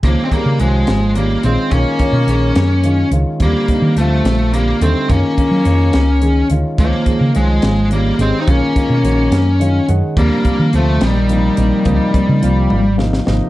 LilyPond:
<<
  \new Staff \with { instrumentName = "Grand piano" } { \time 6/8 \key des \lydian \tempo 4. = 71 <ees aes des' f'>8 <ees aes des' aes'>8 <ees aes des' g'>8 r8 <ees aes des' f'>8 <ees aes des' f'>8 | <ees aes des' f'>8 <ees aes des' f'>8 <ees aes des' aes'>8 r8 <ees aes des' f'>8 <ees aes des' f'>8 | <d g c' f'>8 <d g c' ees'>8 <d g c' f'>8 r8 <d g c' f'>8 <d g c' ees'>8 | <ees aes des' f'>8 <ees aes des' f'>8 <ees aes des' f'>8 r8 <ees aes des' aes'>8 <ees aes des' f'>8 |
<ees aes des' f'>8 <ees aes des' aes'>8 <ees aes des' f'>8 r8 <ees aes des' f'>8 <ees aes des' g'>8 | <ees aes des' f'>8 <ees aes des' f'>8 <ees aes des' ges'>8 r8 <ees aes des' f' des''>8 <ees aes des' aes' ges''>8 | <c f bes d'>8 <c f bes d'>8 <c f bes c'>8 r8 <c f bes ees'>8 <c f bes ees'>8 | <c f bes ees'>8 <c f bes ees'>8 <c f bes f'>8 r8 <c f bes ees' f''>8 <c f bes ees' ees''>8 | }
  \new Staff \with { instrumentName = "Lead electric guitar" } { \time 6/8 \key des \lydian bes16. c'32 bes8 aes4 bes8 c'8 | des'2~ des'8 r8 | bes4 a4 bes8 c'8 | des'2~ des'8 r8 |
bes4 aes4 bes8 c'16. ees'32 | des'2~ des'8 r8 | bes4 a8 g4.~ | g2 r4 | }
  \new Staff \with { instrumentName = "Tenor saxophone" } { \clef bass \time 6/8 \key des \lydian f16. aes32 g8 f4 g8 aes8 | bes2~ bes8 r8 | g4 f4 g8 a8 | bes2~ bes8 r8 |
f4 f4 g8 aes16. c'32 | bes2~ bes8 r8 | g4 f8 ees4.~ | ees2 r4 | }
  \new Staff \with { instrumentName = "Fingered electric bass" } { \clef bass \time 6/8 \key des \lydian des,16 r8 des16 c,8 aes,,4 bes,,16 r16 | ces,16 r8 ces16 bes,,8 ges,4 des,16 r16 | ees,16 r8 ees16 d,8 bes,,4 ees,16 r16 | ges,16 r8 ges16 f,8 des,4 d,16 r16 |
des,16 r8 des16 c,8 aes,,4 aes,,16 r16 | ces,16 r8 ces16 bes,,8 ges,4 ges,16 r16 | ees,16 r8 ees16 d,8 bes,,4 bes,,16 r16 | des,16 r8 des16 c,8 aes,,4 aes,,16 r16 | }
  \new DrumStaff \with { instrumentName = "Drums" } \drummode { \time 6/8 <hh bd>8 <hh bd>8 hh8 <hh sn>8 hh8 hh8 | <hh bd>8 <hh bd>8 hh8 <hh sn>8 hh8 hh8 | <hh bd>8 <hh bd>8 hh8 <hh sn>8 hh8 hh8 | <hh bd>8 <hh bd>8 hh8 <hh sn>8 hh8 hh8 |
<hh bd>8 <hh bd>8 hh8 <hh sn>8 hh8 hh8 | <hh bd>8 <hh bd>8 hh8 <hh sn>8 hh8 hh8 | <hh bd>8 <hh bd>8 hh8 <hh sn>8 hh8 hh8 | <hh bd>8 <hh bd>8 hh8 tommh8 sn16 sn16 sn8 | }
>>